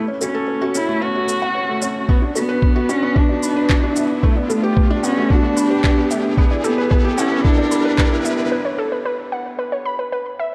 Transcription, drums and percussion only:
0.21 shaker medium
0.75 shaker medium
1.29 shaker medium
1.82 shaker medium
2.09 kick loud
2.36 shaker medium
2.62 kick loud
2.89 shaker medium
3.16 kick medium
3.43 shaker medium
3.70 kick loud
3.70 clap medium
3.96 shaker medium
4.23 kick medium
4.50 shaker medium
4.77 kick loud
5.04 shaker medium
5.30 kick medium
5.57 shaker medium
5.84 kick loud
5.84 clap medium
6.11 shaker medium
6.37 kick loud
6.64 shaker medium
6.91 kick medium
7.18 shaker medium
7.45 kick loud
7.72 shaker medium
7.98 kick medium
7.98 clap medium
8.25 shaker medium

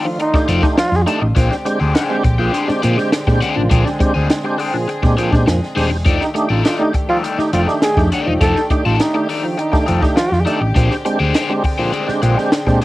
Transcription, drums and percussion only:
0.20 closed hi-hat medium
0.34 kick loud
0.34 snare soft
0.48 closed hi-hat medium
0.63 kick loud
0.63 snare soft
0.78 snare loud
0.78 closed hi-hat medium
0.93 snare soft
1.07 closed hi-hat medium
1.36 kick loud
1.36 closed hi-hat medium
1.52 snare soft
1.66 closed hi-hat medium
1.95 snare loud
1.95 closed hi-hat medium
2.24 kick medium
2.24 closed hi-hat medium
2.54 closed hi-hat medium
2.69 snare soft
2.83 closed hi-hat medium
2.98 snare soft
3.12 snare loud
3.12 closed hi-hat loud
3.27 kick medium
3.27 snare soft
3.42 closed hi-hat medium
3.71 kick loud
3.71 closed hi-hat loud
3.86 snare soft
4.00 kick loud
4.00 closed hi-hat medium
4.30 snare loud
4.30 closed hi-hat medium
4.59 open hi-hat medium
4.89 closed hi-hat medium
5.03 kick loud
5.03 snare soft
5.18 closed hi-hat medium
5.33 kick loud
5.33 snare soft
5.48 snare loud
5.48 closed hi-hat loud
5.63 snare soft
5.77 open hi-hat medium
6.06 kick loud
6.06 closed hi-hat medium
6.21 snare soft
6.36 closed hi-hat medium
6.65 snare loud
6.65 closed hi-hat medium
6.94 kick medium
6.94 closed hi-hat medium
7.24 closed hi-hat medium
7.39 snare soft
7.53 closed hi-hat medium
7.68 snare soft
7.82 snare loud
7.82 closed hi-hat loud
7.97 kick loud
7.97 snare soft
8.12 closed hi-hat medium
8.41 kick loud
8.41 closed hi-hat medium
8.56 snare soft
8.70 kick medium
8.70 closed hi-hat medium
8.99 snare loud
8.99 closed hi-hat medium
9.29 open hi-hat medium
9.59 closed hi-hat medium
9.73 kick loud
9.73 snare soft
9.88 closed hi-hat medium
10.03 kick medium
10.03 snare soft
10.17 snare loud
10.17 closed hi-hat loud
10.33 snare soft
10.47 closed hi-hat medium
10.76 kick loud
10.76 closed hi-hat medium
10.91 snare soft
11.06 closed hi-hat medium
11.34 snare loud
11.34 closed hi-hat medium
11.64 kick medium
11.64 open hi-hat soft
11.93 closed hi-hat medium
12.09 snare soft
12.23 closed hi-hat medium
12.38 snare soft
12.52 snare loud
12.52 closed hi-hat loud
12.67 kick medium
12.67 snare soft
12.82 closed hi-hat medium

